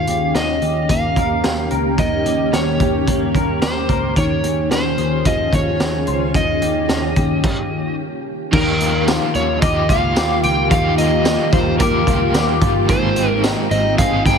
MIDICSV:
0, 0, Header, 1, 7, 480
1, 0, Start_track
1, 0, Tempo, 545455
1, 1745, Time_signature, 4, 2, 24, 8
1, 12656, End_track
2, 0, Start_track
2, 0, Title_t, "Electric slide guitar"
2, 0, Program_c, 0, 29
2, 0, Note_on_c, 0, 77, 84
2, 317, Note_on_c, 0, 75, 82
2, 328, Note_off_c, 0, 77, 0
2, 800, Note_on_c, 0, 77, 78
2, 805, Note_off_c, 0, 75, 0
2, 1477, Note_off_c, 0, 77, 0
2, 1755, Note_on_c, 0, 75, 89
2, 2234, Note_on_c, 0, 73, 89
2, 2244, Note_off_c, 0, 75, 0
2, 3187, Note_off_c, 0, 73, 0
2, 3191, Note_on_c, 0, 72, 76
2, 3677, Note_off_c, 0, 72, 0
2, 3680, Note_on_c, 0, 73, 89
2, 4156, Note_off_c, 0, 73, 0
2, 4159, Note_on_c, 0, 72, 77
2, 4635, Note_on_c, 0, 75, 84
2, 4646, Note_off_c, 0, 72, 0
2, 4877, Note_off_c, 0, 75, 0
2, 4877, Note_on_c, 0, 73, 74
2, 5594, Note_off_c, 0, 73, 0
2, 5597, Note_on_c, 0, 75, 84
2, 6996, Note_off_c, 0, 75, 0
2, 7514, Note_on_c, 0, 70, 106
2, 7956, Note_off_c, 0, 70, 0
2, 8234, Note_on_c, 0, 73, 86
2, 8467, Note_off_c, 0, 73, 0
2, 8471, Note_on_c, 0, 75, 84
2, 8707, Note_on_c, 0, 77, 98
2, 8715, Note_off_c, 0, 75, 0
2, 9152, Note_off_c, 0, 77, 0
2, 9189, Note_on_c, 0, 79, 113
2, 9411, Note_off_c, 0, 79, 0
2, 9426, Note_on_c, 0, 77, 107
2, 9659, Note_off_c, 0, 77, 0
2, 9662, Note_on_c, 0, 75, 88
2, 10143, Note_on_c, 0, 72, 91
2, 10158, Note_off_c, 0, 75, 0
2, 10374, Note_off_c, 0, 72, 0
2, 10378, Note_on_c, 0, 70, 78
2, 11066, Note_off_c, 0, 70, 0
2, 11350, Note_on_c, 0, 72, 111
2, 11794, Note_off_c, 0, 72, 0
2, 12067, Note_on_c, 0, 75, 90
2, 12289, Note_off_c, 0, 75, 0
2, 12308, Note_on_c, 0, 77, 92
2, 12549, Note_off_c, 0, 77, 0
2, 12552, Note_on_c, 0, 79, 92
2, 12656, Note_off_c, 0, 79, 0
2, 12656, End_track
3, 0, Start_track
3, 0, Title_t, "Clean electric guitar"
3, 0, Program_c, 1, 27
3, 0, Note_on_c, 1, 51, 74
3, 0, Note_on_c, 1, 61, 55
3, 69, Note_on_c, 1, 67, 54
3, 95, Note_off_c, 1, 61, 0
3, 304, Note_on_c, 1, 61, 54
3, 534, Note_off_c, 1, 67, 0
3, 545, Note_on_c, 1, 67, 52
3, 786, Note_on_c, 1, 58, 64
3, 1024, Note_on_c, 1, 70, 60
3, 1254, Note_off_c, 1, 67, 0
3, 1264, Note_on_c, 1, 67, 52
3, 1493, Note_off_c, 1, 70, 0
3, 1504, Note_on_c, 1, 70, 56
3, 1736, Note_off_c, 1, 51, 0
3, 1747, Note_on_c, 1, 51, 69
3, 1977, Note_off_c, 1, 67, 0
3, 1987, Note_on_c, 1, 67, 54
3, 2223, Note_off_c, 1, 61, 0
3, 2227, Note_on_c, 1, 61, 57
3, 2458, Note_off_c, 1, 67, 0
3, 2469, Note_on_c, 1, 67, 53
3, 2695, Note_off_c, 1, 58, 0
3, 2705, Note_on_c, 1, 58, 66
3, 2935, Note_off_c, 1, 70, 0
3, 2946, Note_on_c, 1, 70, 62
3, 3173, Note_off_c, 1, 67, 0
3, 3183, Note_on_c, 1, 67, 55
3, 3413, Note_off_c, 1, 70, 0
3, 3424, Note_on_c, 1, 70, 54
3, 3653, Note_off_c, 1, 51, 0
3, 3664, Note_on_c, 1, 51, 76
3, 3712, Note_off_c, 1, 67, 0
3, 3712, Note_off_c, 1, 70, 0
3, 3713, Note_off_c, 1, 58, 0
3, 3904, Note_on_c, 1, 68, 52
3, 4140, Note_off_c, 1, 61, 0
3, 4144, Note_on_c, 1, 61, 57
3, 4372, Note_off_c, 1, 68, 0
3, 4383, Note_on_c, 1, 68, 56
3, 4627, Note_on_c, 1, 53, 61
3, 5096, Note_off_c, 1, 68, 0
3, 5106, Note_on_c, 1, 68, 53
3, 5345, Note_on_c, 1, 72, 58
3, 5582, Note_off_c, 1, 51, 0
3, 5586, Note_on_c, 1, 51, 73
3, 5633, Note_off_c, 1, 72, 0
3, 5634, Note_off_c, 1, 53, 0
3, 5634, Note_off_c, 1, 68, 0
3, 5826, Note_on_c, 1, 67, 57
3, 5852, Note_off_c, 1, 61, 0
3, 6065, Note_on_c, 1, 61, 53
3, 6302, Note_off_c, 1, 67, 0
3, 6306, Note_on_c, 1, 67, 55
3, 6593, Note_off_c, 1, 61, 0
3, 7033, Note_off_c, 1, 51, 0
3, 7033, Note_off_c, 1, 67, 0
3, 7505, Note_on_c, 1, 51, 80
3, 7748, Note_on_c, 1, 58, 61
3, 7987, Note_on_c, 1, 65, 63
3, 8216, Note_off_c, 1, 58, 0
3, 8226, Note_on_c, 1, 58, 63
3, 8467, Note_on_c, 1, 67, 69
3, 8693, Note_off_c, 1, 65, 0
3, 8704, Note_on_c, 1, 65, 61
3, 8934, Note_off_c, 1, 67, 0
3, 8944, Note_on_c, 1, 67, 69
3, 9170, Note_off_c, 1, 65, 0
3, 9181, Note_on_c, 1, 65, 56
3, 9420, Note_off_c, 1, 51, 0
3, 9423, Note_on_c, 1, 51, 85
3, 9652, Note_off_c, 1, 58, 0
3, 9662, Note_on_c, 1, 58, 66
3, 9894, Note_off_c, 1, 65, 0
3, 9905, Note_on_c, 1, 65, 60
3, 10135, Note_off_c, 1, 58, 0
3, 10146, Note_on_c, 1, 58, 63
3, 10374, Note_off_c, 1, 67, 0
3, 10385, Note_on_c, 1, 67, 77
3, 10616, Note_off_c, 1, 65, 0
3, 10627, Note_on_c, 1, 65, 63
3, 10854, Note_off_c, 1, 67, 0
3, 10865, Note_on_c, 1, 67, 70
3, 11092, Note_off_c, 1, 65, 0
3, 11103, Note_on_c, 1, 65, 62
3, 11344, Note_on_c, 1, 44, 94
3, 11392, Note_off_c, 1, 65, 0
3, 11393, Note_off_c, 1, 67, 0
3, 11394, Note_off_c, 1, 58, 0
3, 11588, Note_on_c, 1, 60, 62
3, 11826, Note_on_c, 1, 63, 61
3, 12062, Note_off_c, 1, 60, 0
3, 12066, Note_on_c, 1, 60, 66
3, 12305, Note_on_c, 1, 68, 78
3, 12503, Note_off_c, 1, 51, 0
3, 12542, Note_off_c, 1, 63, 0
3, 12546, Note_on_c, 1, 63, 60
3, 12656, Note_off_c, 1, 44, 0
3, 12656, Note_off_c, 1, 60, 0
3, 12656, Note_off_c, 1, 63, 0
3, 12656, Note_off_c, 1, 68, 0
3, 12656, End_track
4, 0, Start_track
4, 0, Title_t, "Ambient pad"
4, 0, Program_c, 2, 92
4, 0, Note_on_c, 2, 51, 80
4, 0, Note_on_c, 2, 58, 72
4, 0, Note_on_c, 2, 61, 63
4, 0, Note_on_c, 2, 67, 79
4, 3627, Note_off_c, 2, 61, 0
4, 3627, Note_off_c, 2, 67, 0
4, 3628, Note_off_c, 2, 58, 0
4, 3629, Note_off_c, 2, 51, 0
4, 3664, Note_on_c, 2, 61, 70
4, 3665, Note_on_c, 2, 51, 72
4, 3666, Note_on_c, 2, 65, 68
4, 3667, Note_on_c, 2, 68, 84
4, 5565, Note_off_c, 2, 61, 0
4, 5567, Note_off_c, 2, 65, 0
4, 5567, Note_off_c, 2, 68, 0
4, 6516, Note_off_c, 2, 51, 0
4, 7511, Note_on_c, 2, 51, 80
4, 7511, Note_on_c, 2, 58, 69
4, 7511, Note_on_c, 2, 67, 82
4, 7512, Note_on_c, 2, 65, 77
4, 11313, Note_off_c, 2, 51, 0
4, 11313, Note_off_c, 2, 58, 0
4, 11313, Note_off_c, 2, 65, 0
4, 11313, Note_off_c, 2, 67, 0
4, 11344, Note_on_c, 2, 60, 71
4, 11345, Note_on_c, 2, 63, 94
4, 11347, Note_on_c, 2, 56, 79
4, 12656, Note_off_c, 2, 56, 0
4, 12656, Note_off_c, 2, 60, 0
4, 12656, Note_off_c, 2, 63, 0
4, 12656, End_track
5, 0, Start_track
5, 0, Title_t, "Overdriven electric guitar"
5, 0, Program_c, 3, 29
5, 7491, Note_on_c, 3, 51, 67
5, 7505, Note_on_c, 3, 53, 76
5, 7515, Note_on_c, 3, 58, 82
5, 7526, Note_on_c, 3, 65, 84
5, 7536, Note_on_c, 3, 67, 87
5, 8450, Note_off_c, 3, 53, 0
5, 8461, Note_on_c, 3, 53, 64
5, 8463, Note_off_c, 3, 58, 0
5, 8470, Note_off_c, 3, 65, 0
5, 8473, Note_on_c, 3, 58, 69
5, 8480, Note_off_c, 3, 67, 0
5, 8481, Note_on_c, 3, 65, 66
5, 8487, Note_off_c, 3, 51, 0
5, 8490, Note_on_c, 3, 67, 73
5, 8692, Note_off_c, 3, 67, 0
5, 8703, Note_off_c, 3, 53, 0
5, 8703, Note_on_c, 3, 67, 56
5, 8709, Note_off_c, 3, 58, 0
5, 8709, Note_off_c, 3, 65, 0
5, 8719, Note_on_c, 3, 65, 54
5, 8731, Note_on_c, 3, 58, 45
5, 9410, Note_on_c, 3, 51, 75
5, 9424, Note_off_c, 3, 67, 0
5, 9426, Note_on_c, 3, 53, 77
5, 9427, Note_off_c, 3, 58, 0
5, 9432, Note_off_c, 3, 65, 0
5, 9437, Note_on_c, 3, 58, 78
5, 9447, Note_on_c, 3, 65, 78
5, 9456, Note_on_c, 3, 67, 84
5, 10362, Note_off_c, 3, 53, 0
5, 10373, Note_off_c, 3, 58, 0
5, 10373, Note_on_c, 3, 53, 62
5, 10381, Note_off_c, 3, 65, 0
5, 10383, Note_on_c, 3, 58, 70
5, 10391, Note_off_c, 3, 67, 0
5, 10392, Note_on_c, 3, 65, 72
5, 10399, Note_off_c, 3, 51, 0
5, 10401, Note_on_c, 3, 67, 68
5, 10602, Note_off_c, 3, 67, 0
5, 10613, Note_on_c, 3, 67, 63
5, 10618, Note_off_c, 3, 65, 0
5, 10619, Note_off_c, 3, 53, 0
5, 10624, Note_off_c, 3, 58, 0
5, 10628, Note_on_c, 3, 65, 57
5, 10643, Note_on_c, 3, 58, 51
5, 11330, Note_on_c, 3, 44, 86
5, 11339, Note_off_c, 3, 67, 0
5, 11339, Note_on_c, 3, 51, 88
5, 11347, Note_off_c, 3, 65, 0
5, 11348, Note_on_c, 3, 56, 77
5, 11353, Note_off_c, 3, 58, 0
5, 11357, Note_on_c, 3, 60, 75
5, 11365, Note_on_c, 3, 63, 90
5, 11374, Note_on_c, 3, 68, 83
5, 12295, Note_off_c, 3, 56, 0
5, 12297, Note_off_c, 3, 44, 0
5, 12298, Note_on_c, 3, 56, 68
5, 12306, Note_off_c, 3, 60, 0
5, 12309, Note_on_c, 3, 60, 67
5, 12316, Note_off_c, 3, 63, 0
5, 12320, Note_on_c, 3, 63, 69
5, 12323, Note_off_c, 3, 68, 0
5, 12327, Note_on_c, 3, 68, 73
5, 12524, Note_off_c, 3, 68, 0
5, 12534, Note_off_c, 3, 63, 0
5, 12535, Note_on_c, 3, 68, 59
5, 12542, Note_off_c, 3, 56, 0
5, 12544, Note_off_c, 3, 60, 0
5, 12545, Note_on_c, 3, 63, 63
5, 12554, Note_on_c, 3, 60, 52
5, 12563, Note_on_c, 3, 56, 48
5, 12656, Note_off_c, 3, 51, 0
5, 12656, Note_off_c, 3, 56, 0
5, 12656, Note_off_c, 3, 60, 0
5, 12656, Note_off_c, 3, 63, 0
5, 12656, Note_off_c, 3, 68, 0
5, 12656, End_track
6, 0, Start_track
6, 0, Title_t, "Picked electric bass"
6, 0, Program_c, 4, 34
6, 68, Note_on_c, 4, 39, 83
6, 278, Note_off_c, 4, 39, 0
6, 308, Note_on_c, 4, 39, 84
6, 518, Note_off_c, 4, 39, 0
6, 548, Note_on_c, 4, 39, 88
6, 758, Note_off_c, 4, 39, 0
6, 786, Note_on_c, 4, 39, 100
6, 997, Note_off_c, 4, 39, 0
6, 1026, Note_on_c, 4, 39, 82
6, 1237, Note_off_c, 4, 39, 0
6, 1271, Note_on_c, 4, 39, 91
6, 1480, Note_off_c, 4, 39, 0
6, 1512, Note_on_c, 4, 37, 78
6, 1720, Note_off_c, 4, 37, 0
6, 1745, Note_on_c, 4, 39, 89
6, 1956, Note_off_c, 4, 39, 0
6, 1988, Note_on_c, 4, 39, 86
6, 2198, Note_off_c, 4, 39, 0
6, 2229, Note_on_c, 4, 39, 86
6, 2439, Note_off_c, 4, 39, 0
6, 2466, Note_on_c, 4, 39, 93
6, 2677, Note_off_c, 4, 39, 0
6, 2708, Note_on_c, 4, 39, 82
6, 2918, Note_off_c, 4, 39, 0
6, 2946, Note_on_c, 4, 39, 83
6, 3157, Note_off_c, 4, 39, 0
6, 3186, Note_on_c, 4, 39, 95
6, 3397, Note_off_c, 4, 39, 0
6, 3425, Note_on_c, 4, 37, 84
6, 3636, Note_off_c, 4, 37, 0
6, 3665, Note_on_c, 4, 39, 87
6, 3876, Note_off_c, 4, 39, 0
6, 3905, Note_on_c, 4, 39, 83
6, 4117, Note_off_c, 4, 39, 0
6, 4382, Note_on_c, 4, 39, 82
6, 4595, Note_off_c, 4, 39, 0
6, 4624, Note_on_c, 4, 39, 88
6, 4836, Note_off_c, 4, 39, 0
6, 4864, Note_on_c, 4, 39, 84
6, 5075, Note_off_c, 4, 39, 0
6, 5107, Note_on_c, 4, 39, 89
6, 5318, Note_off_c, 4, 39, 0
6, 5349, Note_on_c, 4, 37, 82
6, 5558, Note_off_c, 4, 37, 0
6, 5585, Note_on_c, 4, 39, 78
6, 5796, Note_off_c, 4, 39, 0
6, 5828, Note_on_c, 4, 39, 93
6, 6038, Note_off_c, 4, 39, 0
6, 6065, Note_on_c, 4, 39, 86
6, 6277, Note_off_c, 4, 39, 0
6, 6306, Note_on_c, 4, 39, 82
6, 6517, Note_off_c, 4, 39, 0
6, 7507, Note_on_c, 4, 39, 99
6, 8076, Note_off_c, 4, 39, 0
6, 8228, Note_on_c, 4, 39, 107
6, 8438, Note_off_c, 4, 39, 0
6, 8468, Note_on_c, 4, 39, 100
6, 8678, Note_off_c, 4, 39, 0
6, 8707, Note_on_c, 4, 37, 89
6, 8917, Note_off_c, 4, 37, 0
6, 8950, Note_on_c, 4, 39, 95
6, 9159, Note_off_c, 4, 39, 0
6, 9188, Note_on_c, 4, 37, 95
6, 9398, Note_off_c, 4, 37, 0
6, 9426, Note_on_c, 4, 39, 92
6, 9995, Note_off_c, 4, 39, 0
6, 10146, Note_on_c, 4, 39, 97
6, 10357, Note_off_c, 4, 39, 0
6, 10386, Note_on_c, 4, 39, 99
6, 10597, Note_off_c, 4, 39, 0
6, 10624, Note_on_c, 4, 37, 81
6, 10836, Note_off_c, 4, 37, 0
6, 10866, Note_on_c, 4, 39, 99
6, 11077, Note_off_c, 4, 39, 0
6, 11103, Note_on_c, 4, 31, 99
6, 11315, Note_off_c, 4, 31, 0
6, 11345, Note_on_c, 4, 32, 102
6, 11915, Note_off_c, 4, 32, 0
6, 12064, Note_on_c, 4, 32, 106
6, 12276, Note_off_c, 4, 32, 0
6, 12308, Note_on_c, 4, 32, 106
6, 12518, Note_off_c, 4, 32, 0
6, 12545, Note_on_c, 4, 31, 94
6, 12656, Note_off_c, 4, 31, 0
6, 12656, End_track
7, 0, Start_track
7, 0, Title_t, "Drums"
7, 63, Note_on_c, 9, 42, 53
7, 151, Note_off_c, 9, 42, 0
7, 307, Note_on_c, 9, 38, 91
7, 310, Note_on_c, 9, 42, 57
7, 395, Note_off_c, 9, 38, 0
7, 398, Note_off_c, 9, 42, 0
7, 542, Note_on_c, 9, 42, 37
7, 630, Note_off_c, 9, 42, 0
7, 786, Note_on_c, 9, 36, 80
7, 786, Note_on_c, 9, 42, 78
7, 874, Note_off_c, 9, 36, 0
7, 874, Note_off_c, 9, 42, 0
7, 1024, Note_on_c, 9, 36, 73
7, 1027, Note_on_c, 9, 42, 42
7, 1112, Note_off_c, 9, 36, 0
7, 1115, Note_off_c, 9, 42, 0
7, 1265, Note_on_c, 9, 38, 101
7, 1265, Note_on_c, 9, 42, 47
7, 1353, Note_off_c, 9, 38, 0
7, 1353, Note_off_c, 9, 42, 0
7, 1500, Note_on_c, 9, 42, 41
7, 1588, Note_off_c, 9, 42, 0
7, 1744, Note_on_c, 9, 36, 91
7, 1745, Note_on_c, 9, 42, 53
7, 1832, Note_off_c, 9, 36, 0
7, 1833, Note_off_c, 9, 42, 0
7, 1986, Note_on_c, 9, 42, 51
7, 2074, Note_off_c, 9, 42, 0
7, 2226, Note_on_c, 9, 38, 87
7, 2230, Note_on_c, 9, 42, 68
7, 2314, Note_off_c, 9, 38, 0
7, 2318, Note_off_c, 9, 42, 0
7, 2462, Note_on_c, 9, 42, 36
7, 2465, Note_on_c, 9, 36, 81
7, 2550, Note_off_c, 9, 42, 0
7, 2553, Note_off_c, 9, 36, 0
7, 2706, Note_on_c, 9, 36, 84
7, 2707, Note_on_c, 9, 42, 80
7, 2794, Note_off_c, 9, 36, 0
7, 2795, Note_off_c, 9, 42, 0
7, 2944, Note_on_c, 9, 36, 70
7, 2949, Note_on_c, 9, 42, 44
7, 3032, Note_off_c, 9, 36, 0
7, 3037, Note_off_c, 9, 42, 0
7, 3184, Note_on_c, 9, 42, 51
7, 3185, Note_on_c, 9, 38, 110
7, 3272, Note_off_c, 9, 42, 0
7, 3273, Note_off_c, 9, 38, 0
7, 3422, Note_on_c, 9, 42, 43
7, 3424, Note_on_c, 9, 36, 80
7, 3510, Note_off_c, 9, 42, 0
7, 3512, Note_off_c, 9, 36, 0
7, 3664, Note_on_c, 9, 36, 95
7, 3665, Note_on_c, 9, 42, 57
7, 3752, Note_off_c, 9, 36, 0
7, 3753, Note_off_c, 9, 42, 0
7, 3904, Note_on_c, 9, 42, 55
7, 3992, Note_off_c, 9, 42, 0
7, 4144, Note_on_c, 9, 38, 89
7, 4148, Note_on_c, 9, 42, 62
7, 4232, Note_off_c, 9, 38, 0
7, 4236, Note_off_c, 9, 42, 0
7, 4380, Note_on_c, 9, 42, 38
7, 4468, Note_off_c, 9, 42, 0
7, 4621, Note_on_c, 9, 42, 75
7, 4624, Note_on_c, 9, 36, 86
7, 4709, Note_off_c, 9, 42, 0
7, 4712, Note_off_c, 9, 36, 0
7, 4863, Note_on_c, 9, 36, 68
7, 4866, Note_on_c, 9, 42, 47
7, 4951, Note_off_c, 9, 36, 0
7, 4954, Note_off_c, 9, 42, 0
7, 5105, Note_on_c, 9, 38, 108
7, 5105, Note_on_c, 9, 42, 46
7, 5193, Note_off_c, 9, 38, 0
7, 5193, Note_off_c, 9, 42, 0
7, 5339, Note_on_c, 9, 42, 43
7, 5427, Note_off_c, 9, 42, 0
7, 5583, Note_on_c, 9, 36, 101
7, 5584, Note_on_c, 9, 42, 55
7, 5671, Note_off_c, 9, 36, 0
7, 5672, Note_off_c, 9, 42, 0
7, 5823, Note_on_c, 9, 42, 52
7, 5911, Note_off_c, 9, 42, 0
7, 6063, Note_on_c, 9, 38, 88
7, 6066, Note_on_c, 9, 42, 59
7, 6151, Note_off_c, 9, 38, 0
7, 6154, Note_off_c, 9, 42, 0
7, 6300, Note_on_c, 9, 42, 33
7, 6305, Note_on_c, 9, 36, 81
7, 6388, Note_off_c, 9, 42, 0
7, 6393, Note_off_c, 9, 36, 0
7, 6545, Note_on_c, 9, 36, 105
7, 6545, Note_on_c, 9, 49, 83
7, 6633, Note_off_c, 9, 36, 0
7, 6633, Note_off_c, 9, 49, 0
7, 7506, Note_on_c, 9, 36, 106
7, 7507, Note_on_c, 9, 49, 93
7, 7594, Note_off_c, 9, 36, 0
7, 7595, Note_off_c, 9, 49, 0
7, 7747, Note_on_c, 9, 42, 62
7, 7835, Note_off_c, 9, 42, 0
7, 7988, Note_on_c, 9, 54, 69
7, 7989, Note_on_c, 9, 38, 104
7, 7993, Note_on_c, 9, 42, 75
7, 8076, Note_off_c, 9, 54, 0
7, 8077, Note_off_c, 9, 38, 0
7, 8081, Note_off_c, 9, 42, 0
7, 8222, Note_on_c, 9, 42, 38
7, 8310, Note_off_c, 9, 42, 0
7, 8464, Note_on_c, 9, 42, 93
7, 8467, Note_on_c, 9, 36, 98
7, 8552, Note_off_c, 9, 42, 0
7, 8555, Note_off_c, 9, 36, 0
7, 8705, Note_on_c, 9, 36, 80
7, 8708, Note_on_c, 9, 42, 51
7, 8793, Note_off_c, 9, 36, 0
7, 8796, Note_off_c, 9, 42, 0
7, 8943, Note_on_c, 9, 54, 68
7, 8944, Note_on_c, 9, 42, 58
7, 8945, Note_on_c, 9, 38, 122
7, 9031, Note_off_c, 9, 54, 0
7, 9032, Note_off_c, 9, 42, 0
7, 9033, Note_off_c, 9, 38, 0
7, 9181, Note_on_c, 9, 42, 54
7, 9269, Note_off_c, 9, 42, 0
7, 9424, Note_on_c, 9, 36, 108
7, 9426, Note_on_c, 9, 42, 62
7, 9512, Note_off_c, 9, 36, 0
7, 9514, Note_off_c, 9, 42, 0
7, 9663, Note_on_c, 9, 42, 60
7, 9751, Note_off_c, 9, 42, 0
7, 9901, Note_on_c, 9, 54, 59
7, 9903, Note_on_c, 9, 38, 113
7, 9906, Note_on_c, 9, 42, 73
7, 9989, Note_off_c, 9, 54, 0
7, 9991, Note_off_c, 9, 38, 0
7, 9994, Note_off_c, 9, 42, 0
7, 10140, Note_on_c, 9, 42, 42
7, 10144, Note_on_c, 9, 36, 98
7, 10228, Note_off_c, 9, 42, 0
7, 10232, Note_off_c, 9, 36, 0
7, 10381, Note_on_c, 9, 42, 94
7, 10384, Note_on_c, 9, 36, 109
7, 10469, Note_off_c, 9, 42, 0
7, 10472, Note_off_c, 9, 36, 0
7, 10622, Note_on_c, 9, 36, 79
7, 10625, Note_on_c, 9, 42, 49
7, 10710, Note_off_c, 9, 36, 0
7, 10713, Note_off_c, 9, 42, 0
7, 10862, Note_on_c, 9, 54, 67
7, 10863, Note_on_c, 9, 38, 120
7, 10863, Note_on_c, 9, 42, 52
7, 10950, Note_off_c, 9, 54, 0
7, 10951, Note_off_c, 9, 38, 0
7, 10951, Note_off_c, 9, 42, 0
7, 11099, Note_on_c, 9, 42, 51
7, 11102, Note_on_c, 9, 36, 98
7, 11187, Note_off_c, 9, 42, 0
7, 11190, Note_off_c, 9, 36, 0
7, 11342, Note_on_c, 9, 36, 111
7, 11342, Note_on_c, 9, 42, 59
7, 11430, Note_off_c, 9, 36, 0
7, 11430, Note_off_c, 9, 42, 0
7, 11581, Note_on_c, 9, 42, 58
7, 11669, Note_off_c, 9, 42, 0
7, 11824, Note_on_c, 9, 54, 70
7, 11826, Note_on_c, 9, 38, 117
7, 11829, Note_on_c, 9, 42, 74
7, 11912, Note_off_c, 9, 54, 0
7, 11914, Note_off_c, 9, 38, 0
7, 11917, Note_off_c, 9, 42, 0
7, 12064, Note_on_c, 9, 42, 43
7, 12152, Note_off_c, 9, 42, 0
7, 12306, Note_on_c, 9, 36, 99
7, 12306, Note_on_c, 9, 42, 95
7, 12394, Note_off_c, 9, 36, 0
7, 12394, Note_off_c, 9, 42, 0
7, 12545, Note_on_c, 9, 36, 78
7, 12549, Note_on_c, 9, 42, 55
7, 12633, Note_off_c, 9, 36, 0
7, 12637, Note_off_c, 9, 42, 0
7, 12656, End_track
0, 0, End_of_file